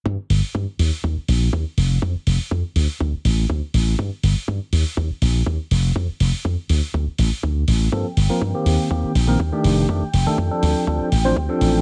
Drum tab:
HH |-o-o-o-o|-o-o-o-o|-o-o-o-o|-o-o-o-o|
BD |o-o-o-o-|o-o-o-o-|o-o-o-o-|o-o-o-o-|

HH |-o-o-o-o|-o-o-o-o|
BD |o-o-o-o-|o-o-o-o-|